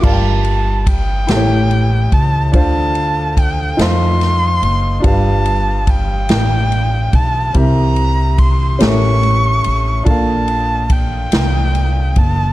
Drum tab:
CC |x-----|------|------|------|
RD |-xxxxx|xxxxxx|xxxxxx|xxxxxx|
SD |---o--|---oo-|---o--|---o--|
BD |o-o--o|o-o---|o-o--o|o-o---|

CC |------|
RD |xxxxxx|
SD |---o--|
BD |o-o--o|